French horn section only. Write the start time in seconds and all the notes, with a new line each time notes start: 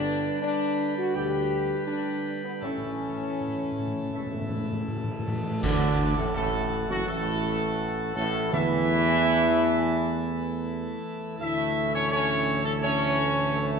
Already playing: D4
0.42 D4
0.97 F#4
1.15 G4
1.86 D4
2.44 B3
2.62 C#4
5.64 D4
6.18 A3
6.36 A3
6.89 F#3
7.07 A3
8.15 A3
8.53 E4
11.40 E4
11.94 C#4
12.12 C#4
12.64 A3
12.83 C#4